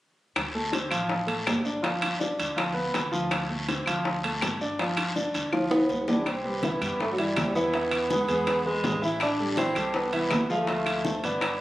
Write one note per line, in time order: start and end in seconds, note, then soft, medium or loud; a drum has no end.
0.36 0.88 D2 medium
0.36 high bongo medium
0.36 high timbale medium
0.36 long guiro medium
0.36 claves medium
0.55 0.70 A3 medium
0.55 0.70 A4 medium
0.72 0.88 C4 medium
0.72 0.88 C5 medium
0.72 high bongo medium
0.72 high timbale medium
0.72 short guiro medium
0.91 1.43 A1 medium
0.91 1.21 F3 medium
0.91 1.21 F4 medium
0.91 high timbale medium
0.91 short guiro medium
0.91 claves medium
1.09 high bongo medium
1.09 long guiro soft
1.27 1.58 A3 medium
1.27 1.58 A4 medium
1.27 high timbale medium
1.47 2.33 G1 medium
1.47 high bongo medium
1.47 low bongo medium
1.47 high timbale medium
1.47 low timbale medium
1.47 short guiro medium
1.47 claves medium
1.65 1.80 D4 medium
1.65 1.80 D5 medium
1.65 short guiro medium
1.82 2.13 F3 medium
1.82 2.13 F4 medium
1.82 high bongo medium
1.82 high timbale medium
1.82 long guiro medium
2.02 high bongo soft
2.02 high timbale medium
2.02 claves soft
2.19 2.50 D4 medium
2.19 2.50 D5 medium
2.19 high bongo medium
2.19 short guiro medium
2.39 2.90 D2 medium
2.39 high bongo soft
2.39 high timbale medium
2.39 short guiro medium
2.56 2.72 F3 medium
2.56 2.72 F4 medium
2.56 high bongo medium
2.56 high timbale medium
2.56 long guiro medium
2.56 claves soft
2.74 3.05 B3 medium
2.74 3.05 B4 medium
2.94 3.81 D2 medium
2.94 high bongo medium
2.94 low bongo medium
2.94 high timbale medium
2.94 short guiro medium
3.12 3.42 F3 medium
3.12 3.42 F4 medium
3.12 high bongo soft
3.12 short guiro medium
3.31 high bongo medium
3.31 high timbale medium
3.31 long guiro medium
3.31 claves medium
3.50 3.65 A3 medium
3.50 3.65 A4 medium
3.68 3.83 C4 medium
3.68 3.84 C5 medium
3.68 high bongo medium
3.68 high timbale medium
3.68 short guiro medium
3.86 4.38 D2 medium
3.86 4.17 F3 medium
3.86 4.17 F4 medium
3.86 high timbale medium
3.86 short guiro medium
3.86 claves soft
4.05 high bongo medium
4.05 long guiro medium
4.24 4.54 A3 medium
4.24 4.54 A4 medium
4.24 high timbale medium
4.41 5.28 G1 medium
4.41 high bongo medium
4.41 low bongo medium
4.41 high timbale medium
4.41 short guiro medium
4.41 claves medium
4.61 4.76 D4 medium
4.61 4.76 D5 medium
4.61 short guiro medium
4.79 5.09 F3 medium
4.79 5.10 F4 medium
4.79 high bongo medium
4.79 high timbale medium
4.79 long guiro medium
4.97 high bongo soft
4.97 high timbale medium
4.97 claves soft
5.16 5.46 D4 medium
5.16 5.46 D5 medium
5.16 high bongo medium
5.16 short guiro medium
5.34 5.86 D2 medium
5.34 high bongo soft
5.34 high timbale medium
5.34 short guiro medium
5.52 5.68 F3 medium
5.52 5.68 F4 medium
5.52 high bongo medium
5.52 high timbale medium
5.52 long guiro medium
5.52 claves medium
5.71 6.05 B3 medium
5.71 6.02 B3 medium
5.71 6.01 B4 medium
5.71 high bongo medium
5.71 high timbale medium
5.89 6.76 C2 medium
5.89 low bongo medium
5.89 low timbale medium
5.89 short guiro medium
6.08 6.23 E3 medium
6.08 6.25 D4 medium
6.08 6.23 E4 medium
6.08 low bongo medium
6.08 low timbale medium
6.08 short guiro medium
6.26 6.61 C4 medium
6.26 high bongo medium
6.26 high conga soft
6.26 high timbale medium
6.26 long guiro medium
6.26 claves medium
6.44 6.60 G3 medium
6.44 6.60 G4 medium
6.44 6.60 B4 medium
6.44 high conga soft
6.63 6.78 E3 medium
6.63 7.03 B3 medium
6.63 6.78 E4 medium
6.63 6.79 E5 medium
6.63 high bongo medium
6.63 high conga medium
6.63 high timbale medium
6.63 short guiro medium
6.81 7.33 G2 medium
6.81 7.11 G3 medium
6.81 7.12 G4 medium
6.81 7.11 B4 medium
6.81 high conga soft
6.81 high timbale medium
6.81 short guiro medium
6.81 claves medium
7.00 7.11 A3 medium
7.00 high bongo medium
7.00 high conga soft
7.00 long guiro medium
7.12 7.21 F#3 medium
7.18 7.49 E3 medium
7.18 7.55 G3 medium
7.18 7.49 E4 medium
7.18 7.49 E5 medium
7.18 high conga soft
7.18 high timbale medium
7.36 8.23 E2 medium
7.36 high bongo medium
7.36 low bongo medium
7.36 high conga medium
7.36 high timbale medium
7.36 low timbale medium
7.36 short guiro medium
7.36 claves medium
7.55 7.70 E3 medium
7.55 8.68 B3 medium
7.55 7.70 E4 medium
7.55 7.71 E5 medium
7.55 high conga soft
7.55 short guiro medium
7.73 8.04 E3 medium
7.73 8.04 E4 medium
7.73 8.04 E5 medium
7.73 high bongo medium
7.73 high conga soft
7.73 high timbale medium
7.73 long guiro medium
7.91 high bongo soft
7.91 high conga soft
7.91 high timbale medium
7.91 claves medium
8.10 8.26 G#3 medium
8.10 8.26 G#4 medium
8.10 8.26 B4 medium
8.10 high bongo medium
8.10 high conga medium
8.10 short guiro medium
8.28 8.80 E2 medium
8.28 8.59 G#3 medium
8.28 8.59 G#4 medium
8.28 8.59 B4 medium
8.28 high bongo soft
8.28 high conga soft
8.28 high timbale medium
8.28 short guiro medium
8.47 high bongo medium
8.47 high conga soft
8.47 high timbale medium
8.47 long guiro soft
8.47 claves medium
8.65 8.96 G#3 medium
8.65 9.03 G#3 medium
8.65 8.96 G#4 medium
8.65 8.96 B4 medium
8.65 high conga soft
8.84 9.71 A1 medium
8.84 high bongo medium
8.84 low bongo medium
8.84 high conga medium
8.84 high timbale medium
8.84 low timbale medium
8.84 short guiro medium
9.02 9.32 E3 medium
9.02 9.33 E4 medium
9.02 9.21 E4 medium
9.02 9.33 E5 medium
9.02 high bongo soft
9.02 short guiro medium
9.20 9.56 D4 medium
9.20 high bongo medium
9.20 high conga soft
9.20 high timbale medium
9.20 long guiro medium
9.20 claves medium
9.39 9.55 G3 medium
9.39 9.55 G4 medium
9.39 9.55 A4 medium
9.39 high conga soft
9.57 9.73 E3 medium
9.57 9.96 C4 medium
9.57 9.73 E4 medium
9.57 9.73 E5 medium
9.57 high bongo medium
9.57 high conga medium
9.57 high timbale medium
9.57 short guiro medium
9.75 10.27 C2 medium
9.75 10.06 G3 medium
9.75 10.07 G4 medium
9.75 10.07 A4 medium
9.75 high conga soft
9.75 high timbale medium
9.75 short guiro medium
9.75 claves medium
9.94 10.49 B3 medium
9.94 high bongo medium
9.94 high conga soft
9.94 long guiro medium
10.13 10.43 E3 medium
10.13 10.43 E4 medium
10.13 10.43 E5 medium
10.13 high conga soft
10.13 high timbale medium
10.30 11.18 D2 medium
10.30 high bongo medium
10.30 low bongo medium
10.30 high conga medium
10.30 high timbale medium
10.30 low timbale medium
10.30 short guiro medium
10.30 claves medium
10.50 10.65 F3 medium
10.50 11.29 A3 medium
10.50 10.65 F4 medium
10.50 10.66 F5 medium
10.50 high conga soft
10.50 short guiro medium
10.67 10.98 F3 medium
10.67 10.99 F4 medium
10.67 10.99 F5 medium
10.67 high bongo medium
10.67 high conga soft
10.67 high timbale medium
10.67 long guiro medium
10.86 high bongo soft
10.86 high conga soft
10.86 high timbale medium
10.86 claves medium
11.05 11.20 A3 medium
11.05 11.21 A4 medium
11.05 11.21 C5 medium
11.05 high bongo medium
11.05 high conga medium
11.05 short guiro medium
11.23 11.61 G1 medium
11.23 11.54 B3 medium
11.23 11.54 B4 medium
11.23 11.54 D5 medium
11.23 high bongo soft
11.23 high conga soft
11.23 high timbale medium
11.23 short guiro medium
11.41 high bongo medium
11.41 high conga soft
11.41 high timbale medium
11.41 long guiro soft
11.41 claves medium